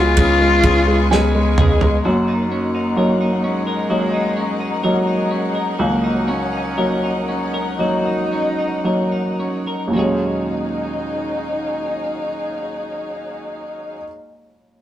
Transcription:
0.00 2.01 C#2 medium
0.00 0.18 C#3 medium
0.00 2.05 C#3 medium
0.00 0.41 G#3 medium
0.00 1.10 B3 medium
0.00 1.12 F4 loud
0.00 2.14 F4 medium
0.00 0.63 G#4 medium
0.00 2.02 B4 medium
0.00 2.01 F5 medium
0.00 2.02 G#5 medium
0.00 2.01 C#6 medium
0.17 0.63 C#3 medium
0.17 2.05 G#3 medium
0.17 kick medium
0.17 ride medium
0.41 0.86 G#3 soft
0.63 1.09 C#3 medium
0.63 1.57 G#4 medium
0.63 kick loud
0.63 ride medium
0.87 1.34 G#3 soft
1.11 1.57 C#3 medium
1.11 2.08 G#3 medium
1.11 2.14 B3 medium
1.11 2.01 G#5 medium
1.11 snare medium
1.35 1.81 G#3 medium
1.58 2.03 C#3 medium
1.58 2.14 G#4 medium
1.58 mid tom medium
1.81 2.05 G#3 soft
1.81 floor tom medium
2.05 5.75 F#2 medium
2.05 3.90 F#3 medium
2.05 2.51 A#3 medium
2.05 9.91 D#4 medium
2.05 9.91 F#4 soft
2.05 9.91 A#4 medium
2.05 9.91 C#5 soft
2.05 9.91 F#5 medium
2.28 2.74 D#4 soft
2.52 3.46 A#3 medium
2.52 3.43 C#4 soft
2.75 3.20 D#4 soft
2.96 3.86 F#3 soft
2.96 3.87 A#3 soft
2.96 3.87 D#4 soft
2.96 3.67 A#4 soft
3.21 4.13 D#4 soft
3.44 4.84 G#3 medium
3.44 4.36 C#4 soft
3.67 4.83 A#4 soft
3.89 4.81 F#3 soft
3.89 5.78 F#3 medium
3.89 4.81 A#3 soft
3.89 4.81 D#4 soft
4.13 4.60 D#4 soft
4.37 5.31 C#4 soft
4.60 5.06 D#4 soft
4.84 5.76 F#3 soft
4.84 5.76 G#3 medium
4.84 5.77 A#3 soft
4.84 5.77 D#4 soft
4.84 5.55 A#4 soft
5.07 6.03 D#4 soft
5.31 6.27 C#4 soft
5.55 6.77 A#4 soft
5.79 9.91 C#2 medium
5.79 7.79 F#3 medium
5.79 6.29 A#3 medium
6.04 6.52 D#4 soft
6.28 7.28 C#4 soft
6.28 7.27 C#4 medium
6.53 7.03 D#4 soft
6.77 7.76 F#3 soft
6.77 7.76 A#3 soft
6.77 7.76 D#4 soft
6.77 7.54 A#4 soft
7.03 8.05 D#4 soft
7.28 7.75 C#4 medium
7.28 8.32 C#4 soft
7.54 8.85 A#4 soft
7.79 8.81 F#3 soft
7.79 9.95 F#3 medium
7.79 8.81 A#3 soft
7.79 9.35 D#4 medium
7.79 8.82 D#4 soft
8.06 8.58 D#4 soft
8.32 9.39 C#4 soft
8.58 9.12 D#4 soft
8.84 9.91 F#3 soft
8.84 9.91 A#3 soft
8.84 9.91 D#4 soft
8.84 9.67 A#4 soft
9.12 9.97 D#4 soft
9.40 9.96 C#4 soft
9.67 9.99 A#4 soft
9.88 13.92 D#2 soft
9.88 13.96 A#2 soft
9.93 14.02 D#3 soft
9.93 14.00 F#3 soft
9.93 14.04 F#3 soft
9.93 14.05 C#4 soft
9.93 13.98 D#4 soft
9.93 13.99 D#4 medium
9.93 13.99 F#4 soft
9.93 13.98 G#4 soft
9.93 13.98 C#5 soft
9.93 13.99 F5 soft
9.98 14.03 G#3 soft
9.98 14.06 D#4 soft
9.98 14.07 G#4 medium
10.02 14.07 C#4 soft

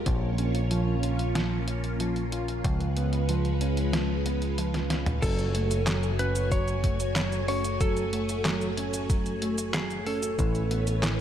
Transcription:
0.00 5.19 F4 medium
0.06 2.61 A#1 medium
0.06 0.30 F3 loud
0.06 2.62 A#3 medium
0.06 2.62 C#4 medium
0.06 2.62 C#5 medium
0.06 kick loud
0.06 closed hi-hat medium
0.38 0.62 C#4 medium
0.38 closed hi-hat medium
0.55 closed hi-hat medium
0.71 0.94 F3 loud
0.71 closed hi-hat medium
1.03 1.34 F4 medium
1.03 closed hi-hat medium
1.19 closed hi-hat medium
1.35 1.59 F3 medium
1.35 snare loud
1.35 closed hi-hat medium
1.68 1.82 C#4 medium
1.68 closed hi-hat medium
1.84 closed hi-hat medium
2.00 2.23 F3 medium
2.00 closed hi-hat medium
2.16 closed hi-hat soft
2.32 2.46 F4 medium
2.32 closed hi-hat medium
2.48 closed hi-hat soft
2.64 5.19 C#2 medium
2.64 2.88 F3 loud
2.64 5.20 G#3 medium
2.64 5.20 C#4 medium
2.64 5.20 B4 medium
2.64 kick loud
2.64 closed hi-hat medium
2.81 closed hi-hat soft
2.97 3.20 B3 medium
2.97 closed hi-hat medium
3.13 closed hi-hat medium
3.29 3.52 F3 loud
3.29 closed hi-hat medium
3.45 closed hi-hat soft
3.61 3.92 C#4 medium
3.61 closed hi-hat medium
3.77 closed hi-hat medium
3.93 4.17 F3 medium
3.93 snare loud
3.93 closed hi-hat medium
4.26 4.40 B3 medium
4.26 closed hi-hat medium
4.42 closed hi-hat medium
4.58 4.81 F3 medium
4.58 closed hi-hat medium
4.74 snare medium
4.74 closed hi-hat soft
4.90 5.04 C#4 medium
4.90 snare medium
4.90 closed hi-hat medium
5.06 closed hi-hat medium
5.06 mid tom medium
5.22 10.35 F#1 medium
5.22 5.46 F#3 loud
5.22 10.35 A3 medium
5.22 10.35 F#4 medium
5.22 6.19 A4 medium
5.22 11.21 C#5 medium
5.22 10.35 G#5 medium
5.22 kick loud
5.22 closed hi-hat medium
5.22 crash loud
5.22 cabasa soft
5.39 closed hi-hat soft
5.39 cabasa soft
5.55 5.78 A3 medium
5.55 closed hi-hat medium
5.71 closed hi-hat medium
5.71 cabasa medium
5.87 6.10 F#3 loud
5.87 snare loud
5.87 clap medium
5.87 closed hi-hat medium
5.87 cabasa soft
6.03 closed hi-hat soft
6.03 cabasa soft
6.19 6.50 C#4 medium
6.19 6.49 B4 medium
6.19 closed hi-hat loud
6.35 closed hi-hat medium
6.35 cabasa medium
6.52 6.75 F#3 medium
6.52 7.47 C#5 loud
6.52 kick loud
6.52 closed hi-hat medium
6.52 cabasa medium
6.68 closed hi-hat soft
6.68 cabasa soft
6.84 6.98 A3 medium
6.84 kick loud
6.84 closed hi-hat medium
7.00 closed hi-hat medium
7.00 cabasa medium
7.16 7.39 F#3 medium
7.16 snare loud
7.16 clap loud
7.16 closed hi-hat medium
7.16 cabasa soft
7.32 closed hi-hat soft
7.32 cabasa soft
7.48 7.62 C#4 medium
7.48 7.78 C#5 loud
7.48 open hi-hat medium
7.64 closed hi-hat medium
7.64 cabasa medium
7.81 8.04 F#3 loud
7.81 9.74 A4 loud
7.81 kick loud
7.81 closed hi-hat medium
7.81 cabasa soft
7.97 closed hi-hat soft
7.97 cabasa soft
8.13 8.36 A3 medium
8.13 closed hi-hat medium
8.29 closed hi-hat medium
8.29 cabasa medium
8.45 8.68 F#3 loud
8.45 snare loud
8.45 clap medium
8.45 closed hi-hat medium
8.45 cabasa soft
8.61 closed hi-hat soft
8.61 cabasa soft
8.77 9.08 C#4 medium
8.77 closed hi-hat loud
8.94 closed hi-hat medium
8.94 cabasa medium
9.10 9.33 F#3 medium
9.10 kick loud
9.10 closed hi-hat medium
9.10 cabasa soft
9.26 closed hi-hat soft
9.26 cabasa soft
9.42 9.56 A3 medium
9.42 closed hi-hat loud
9.58 closed hi-hat medium
9.58 cabasa medium
9.74 9.98 F#3 medium
9.74 10.04 G#4 medium
9.74 snare loud
9.74 clap loud
9.74 closed hi-hat medium
9.74 cabasa soft
9.90 closed hi-hat soft
9.90 cabasa soft
10.06 10.21 C#4 medium
10.06 11.21 A4 loud
10.06 open hi-hat medium
10.23 closed hi-hat medium
10.23 cabasa medium
10.39 11.21 A1 medium
10.39 10.62 E3 loud
10.39 11.21 A3 medium
10.39 11.21 E4 medium
10.39 11.21 B4 medium
10.39 kick loud
10.39 closed hi-hat medium
10.39 cabasa soft
10.55 closed hi-hat soft
10.55 cabasa soft
10.71 10.94 B3 medium
10.71 closed hi-hat medium
10.87 closed hi-hat medium
10.87 cabasa medium
11.03 11.21 E3 loud
11.03 snare loud
11.03 clap medium
11.03 closed hi-hat medium
11.03 cabasa soft

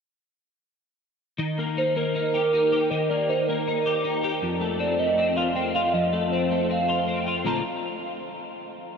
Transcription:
1.38 2.91 D#3 medium
1.58 1.95 A#3 medium
1.77 2.15 D#4 medium
1.77 1.95 C5 medium
1.96 3.09 A#3 medium
1.96 2.92 A#4 loud
2.15 2.53 D#4 medium
2.34 2.71 G4 medium
2.53 3.29 D#4 medium
2.72 3.85 G4 medium
2.90 4.45 D#3 medium
2.90 3.11 D#5 loud
3.09 3.47 A#3 medium
3.09 3.31 D5 loud
3.29 3.67 D#4 medium
3.29 3.49 C5 medium
3.47 4.46 A#3 medium
3.47 4.23 A#4 medium
3.67 4.04 D#4 medium
3.86 4.22 G4 medium
4.04 4.63 D#4 medium
4.23 4.46 G4 medium
4.42 5.92 F2 medium
4.60 4.98 A3 medium
4.79 5.17 C4 medium
4.79 5.01 D5 loud
4.99 6.12 A3 medium
4.99 5.38 D#5 loud
5.18 5.55 C4 medium
5.37 5.75 F4 medium
5.37 5.55 F5 loud
5.55 6.32 C4 medium
5.55 5.64 G5 loud
5.75 6.88 F4 medium
5.75 5.95 F5 loud
5.93 7.44 F2 medium
5.93 6.32 D#5 loud
6.13 6.50 A3 medium
6.32 6.69 C4 medium
6.32 6.67 C5 medium
6.51 7.46 A3 medium
6.70 7.07 C4 medium
6.70 7.24 F5 loud
6.88 7.26 F4 medium
7.08 7.47 C4 medium
7.27 7.47 F4 medium
7.45 7.61 A#2 medium
7.45 7.61 D3 medium
7.45 7.61 A3 medium
7.45 7.62 C4 medium
7.45 7.62 F4 medium
7.45 7.64 A#5 medium

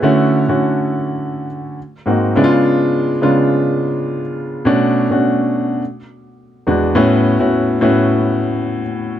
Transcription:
0.00 0.41 D3 medium
0.00 0.41 A3 medium
0.00 0.42 C#4 medium
0.00 0.42 E4 medium
0.00 0.42 F#4 medium
0.00 0.18 B4 soft
0.48 1.46 D3 medium
0.48 1.46 A3 medium
0.48 1.47 C#4 medium
0.48 1.47 E4 medium
0.48 1.47 F#4 medium
2.06 2.31 G#2 medium
2.06 2.31 A#3 medium
2.06 2.31 C4 medium
2.06 2.32 D#4 medium
2.06 2.32 F#4 medium
2.36 3.10 C#3 medium
2.36 3.10 G#3 medium
2.36 3.11 B3 medium
2.36 3.11 D4 medium
2.36 2.43 E4 medium
2.44 3.14 F4 loud
3.22 4.21 C#3 medium
3.22 4.21 G#3 medium
3.22 4.21 B3 medium
3.22 4.21 D4 medium
3.22 4.22 F4 medium
4.65 5.03 B2 medium
4.65 5.03 A3 medium
4.65 5.03 C#4 medium
4.65 5.03 D4 medium
4.65 5.04 F#4 medium
5.10 5.81 B2 medium
5.10 5.81 A3 medium
5.10 5.81 C#4 medium
5.10 5.81 D4 medium
5.10 5.81 F#4 medium
6.67 6.92 E2 medium
6.67 6.92 G#3 medium
6.67 6.92 B3 medium
6.67 6.92 D4 medium
6.67 6.92 F#4 medium
6.95 7.33 A2 loud
6.95 7.33 B3 medium
6.95 7.33 C#4 medium
6.95 7.33 E4 medium
6.95 7.33 F#4 loud
7.39 7.76 A2 medium
7.39 7.76 B3 medium
7.39 7.76 C#4 medium
7.39 7.76 E4 medium
7.39 7.76 F#4 medium
7.81 8.80 A2 medium
7.81 8.81 B3 medium
7.81 8.81 C#4 medium
7.81 8.81 E4 medium
7.81 8.81 F#4 medium

